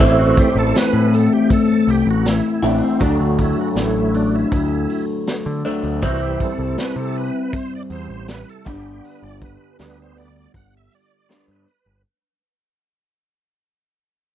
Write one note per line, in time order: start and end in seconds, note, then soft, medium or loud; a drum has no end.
0.00 0.33 A1 medium
0.00 2.61 A2 medium
0.00 0.49 E3 soft
0.00 2.61 E3 medium
0.00 0.49 A3 soft
0.00 2.61 A3 medium
0.00 0.50 C4 medium
0.00 2.61 C4 medium
0.00 0.19 E4 medium
0.00 2.61 E4 medium
0.00 kick medium
0.00 open hi-hat medium
0.19 0.38 F#4 medium
0.37 0.58 G4 medium
0.37 kick medium
0.37 open hi-hat soft
0.55 0.72 A1 medium
0.55 0.77 A4 medium
0.75 1.15 B4 medium
0.75 snare loud
0.75 open hi-hat medium
0.93 1.27 A2 medium
1.14 1.33 A4 medium
1.14 open hi-hat soft
1.33 1.50 G4 medium
1.50 1.90 A4 medium
1.50 kick medium
1.50 open hi-hat medium
1.87 2.04 C2 medium
1.87 2.09 G4 medium
1.87 open hi-hat soft
2.06 2.40 A1 medium
2.11 2.26 F#4 medium
2.26 snare medium
2.26 open hi-hat medium
2.30 2.67 E4 medium
2.62 2.80 A1 medium
2.62 2.99 A2 medium
2.62 2.99 E3 medium
2.62 2.99 A3 medium
2.62 2.99 C4 medium
2.62 2.84 D4 medium
2.62 2.98 E4 medium
2.62 open hi-hat soft
2.85 3.03 C4 medium
3.00 3.18 D2 medium
3.00 5.61 D3 medium
3.00 4.13 F#3 soft
3.00 5.62 F#3 medium
3.00 4.14 A3 soft
3.00 5.62 A3 medium
3.00 5.63 D4 medium
3.00 3.21 D4 medium
3.00 kick medium
3.00 open hi-hat medium
3.20 3.53 D2 medium
3.39 3.59 E4 medium
3.39 kick medium
3.39 open hi-hat soft
3.61 3.69 F#4 medium
3.76 4.43 A1 medium
3.76 snare medium
3.76 open hi-hat medium
3.80 4.17 E4 medium
4.14 4.48 F#3 soft
4.14 4.48 A3 soft
4.14 4.35 D4 medium
4.14 open hi-hat soft
4.36 5.05 E4 medium
4.52 4.85 D2 medium
4.52 kick medium
4.52 open hi-hat medium
4.90 open hi-hat soft
5.27 snare medium
5.27 open hi-hat medium
5.46 5.63 D3 medium
5.65 6.01 D3 medium
5.65 6.01 F#3 medium
5.65 6.00 A3 medium
5.65 6.00 D4 medium
5.65 open hi-hat soft
5.83 6.00 D2 medium
6.02 6.36 C2 medium
6.02 8.63 C3 medium
6.02 6.53 E3 soft
6.02 8.66 G3 medium
6.02 6.54 G3 soft
6.02 8.64 C4 medium
6.02 6.54 C4 soft
6.02 8.64 E4 medium
6.02 6.21 F#4 medium
6.02 kick medium
6.02 open hi-hat medium
6.22 6.39 G4 medium
6.40 6.79 A4 medium
6.40 kick medium
6.40 open hi-hat soft
6.58 6.75 C2 medium
6.78 6.96 B4 medium
6.78 snare medium
6.78 open hi-hat medium
6.96 7.29 C3 medium
6.96 7.17 A4 medium
7.15 7.55 B4 medium
7.15 open hi-hat soft
7.53 7.74 C5 medium
7.53 kick loud
7.53 open hi-hat medium
7.75 7.83 D5 medium
7.90 8.07 E2 medium
7.90 8.30 C5 medium
7.90 open hi-hat soft
8.09 8.43 A1 medium
8.28 8.49 B4 medium
8.28 snare medium
8.28 open hi-hat medium
8.49 8.67 A4 medium
8.65 9.00 G1 medium
8.65 11.27 G2 medium
8.65 11.27 D3 medium
8.65 11.27 G3 medium
8.65 11.28 B3 medium
8.65 11.28 D4 medium
8.65 9.05 G4 medium
8.65 kick medium
8.65 open hi-hat soft
9.05 9.24 B4 medium
9.05 open hi-hat soft
9.22 9.56 G1 medium
9.22 9.42 D5 medium
9.42 9.77 B4 medium
9.42 kick medium
9.42 open hi-hat soft
9.79 10.46 D2 medium
9.79 10.29 D3 soft
9.79 10.29 G3 soft
9.79 10.29 B3 soft
9.79 9.99 B4 medium
9.79 snare medium
9.79 open hi-hat medium
10.02 10.17 C5 medium
10.17 10.52 D5 medium
10.17 open hi-hat soft
10.54 10.87 G1 medium
10.54 10.75 F#5 medium
10.54 kick medium
10.54 open hi-hat medium
10.77 10.94 E5 medium
10.92 11.46 D5 medium
10.92 open hi-hat soft
11.29 11.65 G2 medium
11.29 11.65 D3 medium
11.29 11.65 G3 medium
11.29 11.65 B3 medium
11.29 11.66 D4 medium
11.29 snare medium
11.29 open hi-hat medium
11.48 11.65 G2 medium
11.48 12.02 B4 medium
11.68 open hi-hat soft
11.86 12.03 G1 medium